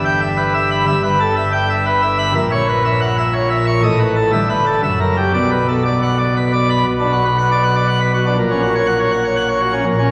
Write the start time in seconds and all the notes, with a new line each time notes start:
Already playing: G1 G2
0.05 G5
0.21 E5
0.37 B4
0.54 E5
0.71 B5
0.87 G1 G2 E5
1.03 B4
1.20 A4
1.37 E5
1.53 G5
1.70 E5
1.86 B4
2.02 E5
2.19 B5
2.35 A#1 A#2 E5
2.51 C#5
2.68 B4
2.85 E5
3.01 F#5
3.18 E5
3.33 C#5
3.50 E5
3.67 C#6
3.83 A1 A2 D#5
4.00 B4
4.16 A4
4.32 G1 G2 E5
4.49 B4
4.66 A4
4.83 F#1 F#2 E5
5.00 A#4
5.17 G4
5.34 B1 B2 D5
5.51 B4
5.68 A4
5.85 D5
6.02 F#5
6.18 D5
6.37 B4
6.53 D5
6.70 B5
6.86 B1 B2
7.00 D4
7.12 F#4
7.25 B4
7.38 F#5
7.51 D5
7.63 F#5
7.75 D5
7.88 F#5
8.00 B4
8.14 F#4
8.26 D4
8.38 A#1 A#2
8.51 C#4
8.62 F#4
8.75 C#5
8.87 F#5
8.99 C#5
9.11 F#5
9.24 C#5
9.36 F#5
9.48 C#5
9.61 F#4
9.73 C#4
9.86 A#1 A#2
9.98 C#4